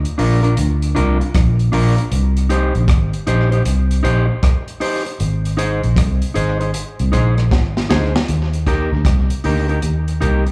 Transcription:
0.05 closed hi-hat
0.18 fingered electric bass A#1, clean electric guitar D4 F4 A#4, open hi-hat
0.43 clean electric guitar D4 F4 A#4, closed hi-hat
0.57 fingered electric bass D2, closed hi-hat
0.82 closed hi-hat
0.95 fingered electric bass C2, clean electric guitar D4 F4 A#4, closed hi-hat
1.20 muted clean electric guitar stroke, closed hi-hat
1.34 fingered electric bass A#1, kick, cross-stick, closed hi-hat
1.59 closed hi-hat
1.72 fingered electric bass A#1, clean electric guitar D4 F4 A#4, open hi-hat
1.98 muted clean electric guitar stroke, closed hi-hat
2.12 fingered electric bass C2, closed hi-hat
2.37 closed hi-hat
2.49 clean electric guitar D#4 G4 C5, closed hi-hat
2.75 fingered electric bass A#1, closed hi-hat
2.88 fingered electric bass G#1, kick, cross-stick, closed hi-hat
3.13 closed hi-hat
3.27 fingered electric bass A#1, clean electric guitar D#4 G4 C5, closed hi-hat
3.51 clean electric guitar D#4 G4 C5, closed hi-hat
3.65 fingered electric bass C2, closed hi-hat
3.91 closed hi-hat
4.03 fingered electric bass A#1, clean electric guitar D#4 G4 C5, closed hi-hat
4.28 muted clean electric guitar stroke
4.43 kick, cross-stick, closed hi-hat
4.68 closed hi-hat
4.80 clean electric guitar D#4 G4 C5, open hi-hat
5.05 muted clean electric guitar stroke, closed hi-hat
5.20 fingered electric bass G#1, closed hi-hat
5.45 closed hi-hat
5.57 clean electric guitar D#4 G#4 C5, closed hi-hat
5.83 fingered electric bass A#1, closed hi-hat
5.96 fingered electric bass C2, kick, cross-stick, closed hi-hat
6.22 closed hi-hat
6.34 fingered electric bass G#1, clean electric guitar D#4 G#4 C5, closed hi-hat
6.60 clean electric guitar D#4 G#4 C5, closed hi-hat
6.74 closed hi-hat
6.99 fingered electric bass C2, closed hi-hat
7.12 fingered electric bass A#1, clean electric guitar D#4 G#4 C5, cross-stick, closed hi-hat
7.37 muted clean electric guitar stroke, cross-stick, closed hi-hat
7.51 fingered electric bass G#1, kick, snare
7.77 snare
7.89 fingered electric bass D2, clean electric guitar D#4 G#4 C5, snare
8.16 snare
8.28 fingered electric bass D#2, closed hi-hat
8.53 closed hi-hat
8.66 clean electric guitar D#4 G4 A#4, kick, closed hi-hat
8.93 fingered electric bass D2
9.05 fingered electric bass C2, kick, cross-stick, closed hi-hat
9.30 closed hi-hat
9.44 fingered electric bass D2, clean electric guitar D#4 G4 A#4, open hi-hat
9.69 clean electric guitar D#4 G4 A#4, closed hi-hat
9.82 fingered electric bass D#2, closed hi-hat
10.08 closed hi-hat
10.21 fingered electric bass C2, clean electric guitar D#4 G4 A#4, closed hi-hat
10.46 muted clean electric guitar stroke, closed hi-hat

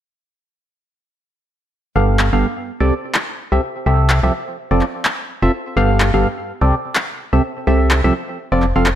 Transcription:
1.96 fm bass G1, synth stab G2 B3 G4 A4 F5
2.19 clap
2.33 fm bass G1, synth stab G2 B3 G4 A4 F5
2.80 fm bass C2, synth stab C3 C4 G4 A4 D5
3.14 clap
3.52 fm bass C2, synth stab C3 C4 G4 A4 E5
3.86 fm bass C2, synth stab C3 C4 G4 A4 E5
4.10 clap
4.23 fm bass C2, synth stab F3 C4 G4 A4 E5
4.71 fm bass F1, synth stab F3 C4 F4 A4 D5
4.81 clap
5.05 clap
5.42 fm bass F1, synth stab C4 F4 A4 E5
5.77 fm bass G1, synth stab G2 B3 G4 A4 F5
6.00 clap
6.14 fm bass G1, synth stab G2 B3 G4 A4 F5
6.61 fm bass C2, synth stab C3 C4 G4 A4 D5
6.95 clap
7.33 fm bass C2, synth stab C3 C4 G4 A4 E5
7.67 fm bass C2, synth stab C3 C4 G4 A4 E5
7.91 clap
8.04 fm bass C2, synth stab F3 C4 G4 A4 E5
8.52 fm bass F1, synth stab F3 C4 F4 A4 D5
8.62 clap
8.76 fm bass F1, synth stab F3 C4 F4 A4 F5
8.86 clap

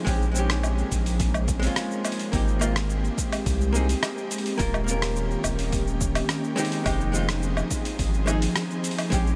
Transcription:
0.05 analog synth bass A#1, hollow-body jazz guitar G#3 C4 C#4 G4, ambient pad G#3 A#3, kick, open hi-hat, shaker
0.22 shaker
0.31 hollow-body jazz guitar G#3 C4, shaker
0.36 hollow-body jazz guitar C#4 G4
0.50 cross-stick, open hi-hat, shaker
0.63 low woodblock, shaker
0.78 shaker
0.92 analog synth bass A#1, kick, open hi-hat, shaker
1.06 open hi-hat, shaker
1.20 kick, open hi-hat, shaker
1.34 low woodblock, shaker
1.48 kick, open hi-hat, shaker
1.59 hollow-body jazz guitar G#3 C4, open hi-hat, shaker
1.64 hollow-body jazz guitar C#4 F4
1.76 cross-stick, open hi-hat, shaker
1.91 shaker
2.05 open hi-hat, low woodblock, shaker
2.12 open hi-hat
2.19 open hi-hat, shaker
2.32 analog synth bass G#1, hollow-body jazz guitar A#3 C4 D#4 G4, ambient pad C4 G4, kick, open hi-hat, shaker
2.48 shaker
2.59 hollow-body jazz guitar A#3 C4 F4, low woodblock, shaker
2.76 cross-stick, open hi-hat, shaker
2.90 shaker
3.05 shaker
3.18 kick, open hi-hat, shaker
3.32 open hi-hat, low woodblock, shaker
3.46 analog synth bass C2, kick, open hi-hat, shaker
3.61 shaker
3.73 hollow-body jazz guitar A#3 C4 D#4 G#4, shaker
3.89 open hi-hat, shaker
4.03 cross-stick, open hi-hat, low woodblock, shaker
4.18 shaker
4.31 open hi-hat, shaker
4.38 open hi-hat
4.46 open hi-hat, shaker
4.58 analog synth bass D#1, ambient pad D#3 A#3 C#4 G4, hollow-body jazz guitar A#3 C#4 F4 A#4, kick, open hi-hat, shaker
4.74 low woodblock, shaker
4.84 hollow-body jazz guitar A#3 C#4, shaker
4.89 hollow-body jazz guitar F4 A#4
5.02 cross-stick, open hi-hat, shaker
5.16 shaker
5.31 shaker
5.44 analog synth bass D#1, kick, open hi-hat, low woodblock, shaker
5.59 open hi-hat, shaker
5.72 kick, open hi-hat, shaker
5.87 shaker
6.01 kick, shaker
6.15 open hi-hat, low woodblock, shaker
6.29 cross-stick, open hi-hat, shaker
6.44 shaker
6.56 ambient pad F3 C4 D#4 G#4, hollow-body jazz guitar G#3 C4 D#4 G4, open hi-hat, shaker
6.65 open hi-hat
6.72 open hi-hat, shaker
6.84 analog synth bass F1, hollow-body jazz guitar G#3 C4 D#4 G4, kick, open hi-hat, low woodblock, shaker
7.01 shaker
7.12 hollow-body jazz guitar G#3 C4 D#4 F4, shaker
7.29 cross-stick, open hi-hat, shaker
7.43 shaker
7.57 low woodblock, shaker
7.70 kick, open hi-hat, shaker
7.85 open hi-hat, shaker
7.99 analog synth bass G#1, kick, open hi-hat, shaker
8.14 shaker
8.26 hollow-body jazz guitar G#3 C4 D#4 G#4, low woodblock, shaker
8.42 open hi-hat, shaker
8.56 cross-stick, open hi-hat, shaker
8.71 shaker
8.84 open hi-hat, shaker
8.91 open hi-hat
8.98 open hi-hat, low woodblock, shaker
9.10 analog synth bass A#1, ambient pad C#3 G#3 A#3, hollow-body jazz guitar G#3 C4 C#4 G4, kick, open hi-hat, shaker
9.27 shaker

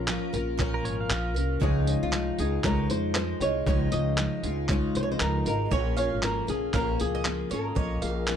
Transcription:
Already playing: upright bass A#1, felt piano A#3 C#4 F4 A#4 C#5, nylon-string guitar A#4
0.07 steel-string acoustic guitar F3 C#4 F4 A#4, clap
0.33 upright bass A#1, steel-string acoustic guitar C#4 F4 A#4, tambourine
0.58 steel-string acoustic guitar A#2 F3 C#4 F4 A#4, felt piano A#3 C#4 F4 C#5, kick, clap
0.74 pedal steel guitar A#4
0.84 upright bass G#1, pedal steel guitar C#5, tambourine
1.01 pedal steel guitar F5
1.09 upright bass A#1, steel-string acoustic guitar F3 C#4 F4 A#4, clap
1.34 upright bass C2, steel-string acoustic guitar C#4 F4 A#4, tambourine
1.60 upright bass C#2, steel-string acoustic guitar C#3 F3 G#3 D#4 F4, felt piano G#3 D#4 F4 C#5, nylon-string guitar G#4, kick
1.86 felt piano G#3 D#4 F4 C#5, tambourine
2.02 upright bass C2, nylon-string guitar F4
2.11 steel-string acoustic guitar F3 G#3 D#4 F4, clap
2.38 upright bass C#2, steel-string acoustic guitar G#3 D#4 F4, nylon-string guitar G#4, tambourine
2.63 upright bass C#2, steel-string acoustic guitar C#3 F3 G#3 D#4 F4, felt piano G#3 D#4 F4 C#5, nylon-string guitar A#4, kick, clap
2.90 upright bass F2, nylon-string guitar C5, tambourine
3.15 steel-string acoustic guitar F3 G#3 D#4 F4, nylon-string guitar C5, clap
3.40 upright bass C2, steel-string acoustic guitar G#3 D#4 F4, nylon-string guitar C#5, tambourine
3.65 upright bass C#2, steel-string acoustic guitar C#3 F3 G#3 D#4 F4, felt piano G#3 D#4 F4 D#5, nylon-string guitar C#5, kick
3.91 upright bass C#2, felt piano G#3 D#4 F4 C#5, nylon-string guitar D#5, tambourine
4.18 steel-string acoustic guitar F3 G#3 D#4 F4, clap
4.43 upright bass C#2, steel-string acoustic guitar G#3 D#4 F4, tambourine
4.68 steel-string acoustic guitar C#3 F3 G#3 D#4 F4, felt piano G#3 D#4 F4 C#5, kick, clap
4.95 upright bass C2, nylon-string guitar C5, tambourine
5.03 nylon-string guitar C#5
5.12 nylon-string guitar C5
5.19 upright bass C#2, steel-string acoustic guitar F3 G#3 D#4 F4, nylon-string guitar A#4, clap
5.45 upright bass G#1, steel-string acoustic guitar G#3 D#4 F4, nylon-string guitar A#4, tambourine
5.71 upright bass A#1, steel-string acoustic guitar A#2 F3 A#3 C#4 F4, felt piano A#3 C#4 F4 C#5, mandolin C#5, nylon-string guitar C#5, kick
5.97 felt piano A#3 C#4 F4 C#5, nylon-string guitar C#5, mandolin F5, tambourine
6.13 upright bass G#1
6.22 steel-string acoustic guitar F3 A#3 C#4 F4, nylon-string guitar A#4, clap
6.47 upright bass A#1, steel-string acoustic guitar A#3 C#4 F4, nylon-string guitar G#4, tambourine
6.73 upright bass A#1, steel-string acoustic guitar A#2 F3 A#3 C#4 F4, felt piano A#3 C#4 F4 C#5, nylon-string guitar A#4, mandolin F5, kick, clap
7.00 upright bass C#2, nylon-string guitar G#4, tambourine
7.15 mandolin D#5
7.24 steel-string acoustic guitar F3 A#3 C#4 F4, clap
7.50 upright bass G#1, steel-string acoustic guitar A#3 C#4 F4, nylon-string guitar A#4, mandolin C#5, tambourine
7.75 upright bass A#1, steel-string acoustic guitar A#2 F3 A#3 C#4 F4, felt piano A#3 C#4 F4 D#5, mandolin C#5, kick
8.01 upright bass A#1, felt piano A#3 C#4 F4 G#4, mandolin F5, tambourine
8.26 steel-string acoustic guitar F3 A#3 C#4 F4, clap

